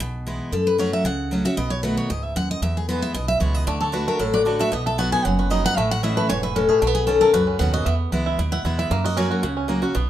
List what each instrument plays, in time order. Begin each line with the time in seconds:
0.00 upright bass B1, steel-string acoustic guitar B2
0.27 steel-string acoustic guitar E3 G#3 B3 E4
0.52 upright bass F#2, steel-string acoustic guitar F#2 A4
0.67 steel-string acoustic guitar B4
0.78 steel-string acoustic guitar F#3 A3 C#4 F#4 C#5
0.93 steel-string acoustic guitar E5
1.04 upright bass C#2, steel-string acoustic guitar C#3 F#5
1.31 steel-string acoustic guitar F#3 A3 C#4 F#4
1.45 steel-string acoustic guitar C#4 F#4 E5
1.57 upright bass B1, steel-string acoustic guitar B2 D#5
1.70 steel-string acoustic guitar C#5
1.83 steel-string acoustic guitar D#3 A3 B3 F#4 B4
1.97 steel-string acoustic guitar C#5
2.10 upright bass C#2, steel-string acoustic guitar G#2 D#5
2.24 steel-string acoustic guitar E5
2.36 upright bass D#2, steel-string acoustic guitar F#2 F#5
2.51 steel-string acoustic guitar D#5
2.62 upright bass E2, steel-string acoustic guitar E2 E5
2.77 steel-string acoustic guitar G#4
2.89 steel-string acoustic guitar E3 G#3 B3 E4 B4
3.02 steel-string acoustic guitar E5
3.14 upright bass B1, steel-string acoustic guitar B2 D#5
3.28 steel-string acoustic guitar E5
3.40 upright bass C#2, steel-string acoustic guitar E3 G#3 B3 E4 C#5
3.54 steel-string acoustic guitar D#5
3.67 upright bass D2, steel-string acoustic guitar D3 D5, five-string banjo A3
3.81 five-string banjo A4, steel-string acoustic guitar C#5
3.92 steel-string acoustic guitar D3 A3 D4 F#4 B4, five-string banjo F#4
4.08 five-string banjo A3, steel-string acoustic guitar A#4
4.19 upright bass A1, steel-string acoustic guitar A2 A4, five-string banjo F#3
4.34 five-string banjo F#4, steel-string acoustic guitar D5
4.45 steel-string acoustic guitar D3 A3 D4 F#4, five-string banjo D4
4.59 five-string banjo A3, steel-string acoustic guitar D4 F#4 E5
4.72 upright bass B1, steel-string acoustic guitar B2 D#5, five-string banjo B3
4.86 five-string banjo A4, steel-string acoustic guitar E5
4.98 steel-string acoustic guitar F#3 B3 D#4 F#4 F#5, five-string banjo F#4
5.12 five-string banjo B3, steel-string acoustic guitar G#5
5.25 upright bass F#1, steel-string acoustic guitar F#2 F#5, five-string banjo F#3
5.39 five-string banjo F#4, steel-string acoustic guitar B4
5.50 steel-string acoustic guitar F#3 B3 D#4 F#4 D#5, five-string banjo D#4
5.65 five-string banjo B3, steel-string acoustic guitar F#5
5.77 upright bass A1, steel-string acoustic guitar A2 E5, five-string banjo A3
5.91 steel-string acoustic guitar F#5
6.03 steel-string acoustic guitar E3 A3 C#4 E4 D#5, five-string banjo E4
6.17 five-string banjo A3, steel-string acoustic guitar B4
6.29 upright bass E1, steel-string acoustic guitar G#2 C#5, five-string banjo E3
6.43 five-string banjo E4, steel-string acoustic guitar B4
6.56 steel-string acoustic guitar A2 A4, five-string banjo C#4
6.68 five-string banjo A3, steel-string acoustic guitar G#4
6.81 upright bass B1, steel-string acoustic guitar B2 F#4, five-string banjo A3
6.87 five-string banjo B3
6.95 steel-string acoustic guitar G#4
7.07 steel-string acoustic guitar B2 D#3 C#4 F#4 A4, five-string banjo C#4
7.21 five-string banjo A4, steel-string acoustic guitar A#4
7.33 upright bass C#2, steel-string acoustic guitar F#2 B4, five-string banjo F#4
7.47 five-string banjo C#4
7.59 upright bass D#2, steel-string acoustic guitar B2 D#3 C#4 F#4 F#5, five-string banjo B3
7.74 five-string banjo F#4, steel-string acoustic guitar D#5
7.86 steel-string acoustic guitar E2 E5, upright bass E2, five-string banjo B3
8.12 upright bass C#2, steel-string acoustic guitar E3 G#3 B3 E4, five-string banjo B3
8.26 five-string banjo E4
8.39 upright bass D#2, steel-string acoustic guitar B2, five-string banjo E4
8.52 five-string banjo E4, steel-string acoustic guitar F#5
8.65 upright bass E2, steel-string acoustic guitar E3 G#3 B3 E4, five-string banjo E4
8.79 five-string banjo E4, steel-string acoustic guitar E5
8.91 upright bass F#2, steel-string acoustic guitar F#2, five-string banjo A#3
9.04 five-string banjo F#4, steel-string acoustic guitar D#5
9.17 steel-string acoustic guitar F#3 A#3 C#4 F#4 C#5, five-string banjo C#4
9.31 five-string banjo F#4, steel-string acoustic guitar A#4
9.43 upright bass C#2, steel-string acoustic guitar C#3, five-string banjo F#4
9.57 five-string banjo C#4
9.68 steel-string acoustic guitar F#3 A#3 C#4 F#4, five-string banjo A#3
9.82 steel-string acoustic guitar C#4 F#4, five-string banjo F#4
9.95 upright bass B1, steel-string acoustic guitar B2, five-string banjo B3